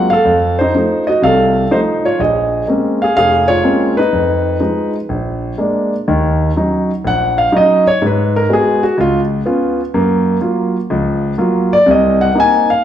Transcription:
0.00 0.11 F#3 soft
0.00 0.11 G#3 soft
0.00 0.11 A#3 soft
0.00 0.12 C4 soft
0.00 0.12 F4 medium
0.00 0.11 F#5 medium
0.10 0.56 A4 medium
0.10 0.55 F5 medium
0.25 0.67 F2 medium
0.59 0.74 D#4 medium
0.59 1.03 C5 medium
0.75 1.08 F3 soft
0.75 1.09 A3 soft
0.75 1.09 D#4 soft
1.07 1.23 F#4 medium
1.07 1.23 D#5 medium
1.22 1.64 C2 medium
1.22 1.64 C3 medium
1.22 1.69 A4 medium
1.22 1.73 F5 medium
1.71 2.05 F3 medium
1.71 2.05 A3 soft
1.71 2.05 D#4 medium
1.71 1.79 C5 medium
2.05 2.19 F4 medium
2.05 2.19 C#5 medium
2.19 2.61 A#1 medium
2.19 2.66 G#4 soft
2.19 2.65 D#5 medium
2.67 3.02 G#3 soft
2.67 3.02 A#3 soft
2.67 3.02 C4 soft
2.67 3.02 C#4 soft
3.02 3.17 G#4 medium
3.02 3.15 F5 medium
3.17 3.59 F1 medium
3.17 3.48 G#4 medium
3.17 3.47 F5 loud
3.48 3.94 F4 medium
3.48 3.93 C#5 medium
3.64 3.98 G#3 medium
3.64 3.98 A#3 soft
3.64 3.98 C4 soft
3.64 3.99 C#4 medium
3.97 4.59 D#4 medium
3.97 4.90 B4 medium
4.13 4.55 F2 medium
4.60 4.95 F3 soft
4.60 4.95 G#3 soft
4.60 4.95 D#4 soft
5.09 5.52 A#1 medium
5.58 5.92 G#3 soft
5.58 5.92 A#3 soft
5.58 5.93 D4 medium
6.08 6.49 D#2 medium
6.08 6.49 D#3 medium
6.56 6.90 F#3 soft
6.56 6.90 C#4 soft
6.56 6.90 D#4 soft
7.05 7.46 A#1 medium
7.05 7.37 F#5 medium
7.38 7.52 F5 medium
7.52 7.86 F#3 soft
7.52 7.86 C#4 soft
7.52 7.86 D#4 medium
7.57 7.86 D#5 medium
7.87 8.01 C#5 medium
8.02 8.43 G#2 medium
8.07 8.35 B4 medium
8.36 8.50 A#4 medium
8.49 8.83 G#3 medium
8.49 8.83 B3 soft
8.49 8.82 F#4 medium
8.53 8.83 G#4 medium
8.83 8.98 F#4 medium
8.98 9.39 C#2 medium
8.98 9.19 F4 medium
9.46 9.80 B3 medium
9.46 9.80 C#4 soft
9.46 9.80 F4 medium
9.94 10.36 F#2 medium
9.94 10.36 A#3 medium
10.41 10.76 F#3 soft
10.41 10.76 A#3 soft
10.41 10.76 F4 soft
10.90 11.32 C#2 medium
10.90 11.32 F3 medium
11.38 11.72 F#3 medium
11.38 11.73 A#3 soft
11.38 11.73 F4 medium
11.73 11.87 D5 medium
11.86 12.29 C2 medium
11.86 12.29 C3 medium
11.91 12.20 D#5 medium
12.21 12.36 F#5 medium
12.35 12.69 A#3 soft
12.35 12.69 C4 soft
12.35 12.69 D#4 soft
12.40 12.69 G#5 medium
12.70 12.84 F5 medium

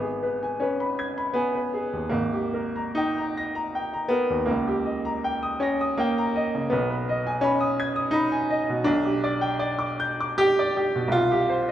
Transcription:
0.00 2.08 G#1 soft
0.00 0.60 B3 medium
0.00 0.34 G#4 soft
0.23 0.54 B4 soft
0.43 0.73 G#5 soft
0.60 1.34 C#4 medium
0.60 0.91 B4 soft
0.80 1.09 B5 soft
0.99 1.28 G#6 soft
1.18 1.47 B5 soft
1.33 2.11 B3 medium
1.33 1.66 G#5 soft
1.55 1.85 B4 soft
1.74 2.04 G#4 soft
1.93 2.12 D#2 soft
2.09 4.43 G#1 soft
2.09 2.96 A#3 medium
2.33 2.67 G4 soft
2.54 2.88 A#4 soft
2.76 3.09 A#5 soft
2.95 4.10 D#4 medium
2.95 3.29 G5 soft
3.18 3.48 A#5 soft
3.37 3.67 A#6 medium
3.55 3.85 A#5 medium
3.75 4.04 G5 soft
3.93 4.22 A#5 soft
4.09 4.46 B3 medium
4.09 4.40 A#4 soft
4.30 4.48 D#2 soft
4.46 6.66 C#2 medium
4.46 5.59 A#3 medium
4.68 4.96 G4 soft
4.85 5.15 D#5 soft
5.05 5.34 A#5 medium
5.24 5.53 G5 medium
5.43 5.72 D#6 medium
5.60 5.97 C#4 medium
5.60 5.91 A#6 soft
5.81 6.09 D#6 medium
5.98 6.70 A#3 medium
5.98 6.27 G5 medium
6.18 6.46 A#5 medium
6.36 6.63 D#5 medium
6.55 6.71 C#3 soft
6.70 8.83 B1 medium
6.70 7.42 B3 medium
6.90 7.18 B4 soft
7.09 7.36 D#5 medium
7.27 7.54 G#5 medium
7.41 8.12 C#4 medium
7.41 7.71 B5 medium
7.60 7.88 D#6 medium
7.80 8.07 G#6 medium
7.96 8.24 D#6 medium
8.11 8.48 D#4 medium
8.11 8.42 B5 medium
8.32 8.60 G#5 medium
8.50 8.79 D#5 medium
8.69 8.87 B2 soft
8.84 11.10 B1 medium
8.84 10.39 D4 medium
9.05 9.34 G4 soft
9.24 9.52 D5 medium
9.41 9.71 G5 medium
9.59 9.91 D5 medium
9.79 10.12 D6 medium
10.00 10.32 G6 medium
10.20 10.52 D6 medium
10.38 10.75 G4 loud
10.38 10.70 G5 medium
10.59 10.88 D5 medium
10.77 11.06 G4 medium
10.95 11.14 B2 soft
11.08 11.72 C2 medium
11.12 11.72 F4 loud
11.31 11.61 G4 medium
11.50 11.72 C5 medium

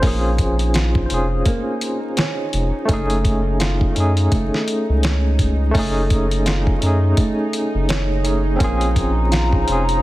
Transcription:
0.00 1.07 A#1 loud
0.00 0.37 A#3 medium
0.00 0.02 C#4 medium
0.00 1.06 C#4 medium
0.00 10.02 D#4 medium
0.00 0.05 F4 medium
0.00 0.07 G#4 medium
0.00 1.06 C5 medium
0.00 kick medium
0.00 open hi-hat medium
0.05 1.07 F4 medium
0.05 1.09 G#4 loud
0.38 kick medium
0.38 closed hi-hat medium
0.59 closed hi-hat soft
0.74 1.09 F4 medium
0.74 snare loud
0.74 closed hi-hat medium
0.95 kick medium
1.06 2.84 C#4 medium
1.06 2.83 C5 medium
1.10 1.43 F1 medium
1.10 2.86 F4 medium
1.10 2.87 G#4 medium
1.10 closed hi-hat medium
1.46 2.14 A#3 medium
1.46 kick loud
1.46 closed hi-hat medium
1.81 closed hi-hat medium
2.17 2.86 C#4 medium
2.17 snare loud
2.17 closed hi-hat medium
2.53 2.72 F1 medium
2.53 closed hi-hat medium
2.85 3.93 F#1 loud
2.85 3.91 A3 loud
2.85 3.23 A3 medium
2.85 3.92 C#4 medium
2.85 kick loud
2.85 closed hi-hat medium
2.91 3.93 D#4 medium
2.91 3.95 G#4 loud
3.10 closed hi-hat soft
3.25 kick medium
3.25 closed hi-hat medium
3.60 3.94 F4 medium
3.60 snare loud
3.60 closed hi-hat medium
3.81 kick medium
3.92 5.69 A3 medium
3.92 5.70 C#4 medium
3.96 4.29 F#2 medium
3.96 5.72 D#4 medium
3.96 closed hi-hat medium
4.00 5.73 G#4 medium
4.17 closed hi-hat soft
4.31 4.50 F#1 medium
4.31 5.00 A3 medium
4.31 kick loud
4.31 closed hi-hat medium
4.54 snare soft
4.68 closed hi-hat medium
4.89 5.72 C#2 medium
5.03 5.72 C#4 medium
5.03 snare loud
5.03 closed hi-hat medium
5.39 kick medium
5.39 closed hi-hat medium
5.71 6.76 A3 loud
5.71 6.09 A3 medium
5.71 6.78 C#4 medium
5.71 kick loud
5.71 open hi-hat medium
5.75 6.79 F#1 loud
5.75 6.79 D#4 medium
5.79 6.80 G#4 loud
6.10 kick medium
6.10 closed hi-hat medium
6.31 closed hi-hat soft
6.46 6.80 F4 medium
6.46 snare loud
6.46 closed hi-hat medium
6.67 kick medium
6.78 8.20 A3 medium
6.78 8.21 C#4 medium
6.78 closed hi-hat medium
6.83 7.14 F#2 medium
6.83 8.23 D#4 medium
6.83 8.24 G#4 medium
7.17 7.86 A3 medium
7.17 kick loud
7.17 closed hi-hat medium
7.53 closed hi-hat medium
7.75 8.58 F#1 medium
7.89 8.57 C#4 medium
7.89 snare loud
7.89 closed hi-hat medium
8.23 8.56 A3 medium
8.23 8.56 C#4 medium
8.23 8.57 D#4 medium
8.23 closed hi-hat medium
8.27 8.58 G#4 medium
8.56 8.94 A#3 medium
8.56 9.62 C4 medium
8.56 9.63 C#4 medium
8.56 10.02 G#4 medium
8.56 10.02 A#5 medium
8.60 9.65 A#1 loud
8.60 9.65 F4 medium
8.60 kick loud
8.60 closed hi-hat medium
8.64 9.66 G#4 loud
8.81 closed hi-hat soft
8.96 kick medium
8.96 closed hi-hat medium
9.32 9.66 F4 medium
9.32 snare loud
9.32 closed hi-hat medium
9.53 kick medium
9.64 10.02 C#4 medium
9.64 10.02 C5 medium
9.64 closed hi-hat medium
9.68 10.00 F1 medium
9.68 10.02 F4 medium
9.68 10.02 G#4 medium
9.89 closed hi-hat soft

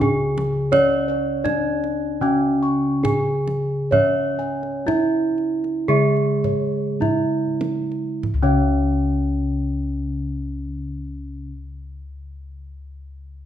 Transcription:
0.00 0.72 C#3 medium
0.00 1.40 C#3 medium
0.00 0.09 D4 medium
0.00 0.72 G#4 medium
0.00 0.41 G#5 medium
0.00 kendang low medium
0.38 kendang slap soft
0.38 kendang high medium
0.72 2.22 C#4 medium
0.72 3.00 C#5 medium
0.72 1.45 C#5 medium
0.72 1.12 D5 medium
0.72 kendang low medium
1.08 1.49 C#5 medium
1.08 kendang slap soft
1.44 2.22 D4 medium
1.44 1.53 D4 soft
1.44 1.87 D5 medium
1.44 kendang slap soft
1.44 kendang high medium
1.44 kendang low medium
1.84 kendang slap soft
2.21 4.82 C#3 medium
2.21 3.92 C#3 medium
2.21 3.04 C#4 medium
2.21 2.67 G#5 medium
2.63 3.09 C#6 medium
3.03 3.11 D4 medium
3.03 3.92 G#4 medium
3.03 3.53 G#5 medium
3.03 kendang high medium
3.03 kendang low medium
3.47 kendang slap soft
3.47 kendang high medium
3.91 5.89 C#4 medium
3.91 6.96 C#5 medium
3.91 4.87 C#5 medium
3.91 4.44 E5 medium
3.91 kendang low medium
4.39 4.93 G#5 medium
4.39 kendang slap soft
4.63 kendang slap soft
4.86 4.94 D4 medium
4.86 5.89 E4 medium
4.86 5.43 E5 medium
4.86 kendang slap soft
4.86 kendang high medium
4.86 kendang low medium
5.38 kendang slap soft
5.64 kendang slap soft
5.88 9.47 C#3 medium
5.88 8.23 G#3 medium
5.88 7.00 G#4 loud
5.88 6.51 E5 medium
6.17 kendang slap soft
6.44 7.09 C#5 medium
6.44 kendang slap soft
6.44 kendang low medium
7.00 7.08 D4 medium
7.00 8.23 E4 medium
7.00 7.69 E5 medium
7.00 kendang slap soft
7.00 kendang low medium
7.61 kendang slap soft
7.61 kendang high medium
7.92 kendang slap soft
8.23 kendang low medium
8.34 11.41 C#2 medium
8.43 11.50 C#3 medium
8.43 11.50 C#4 medium
8.43 11.51 C#5 medium

